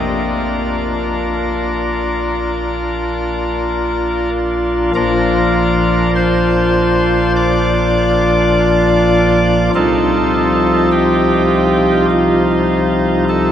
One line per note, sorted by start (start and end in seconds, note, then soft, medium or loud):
0.00 4.91 A#1 medium
0.00 4.91 A#2 medium
0.00 4.91 A#3 soft
0.00 4.91 D4 soft
0.00 4.91 F4 soft
0.00 4.30 A#4 medium
4.95 9.70 A#1 medium
4.95 9.70 A#2 medium
4.95 9.70 F3 medium
4.95 9.70 D4 medium
4.95 9.70 F4 medium
4.95 6.11 A#4 loud
6.16 7.32 C5 medium
7.36 9.70 D5 loud
9.75 13.52 C2 medium
9.75 13.52 C3 medium
9.75 13.52 F3 medium
9.75 13.52 D#4 medium
9.75 12.08 F4 medium
9.75 10.88 A4 loud
10.92 12.05 G4 loud
12.10 13.24 F4 medium
13.29 13.52 A4 loud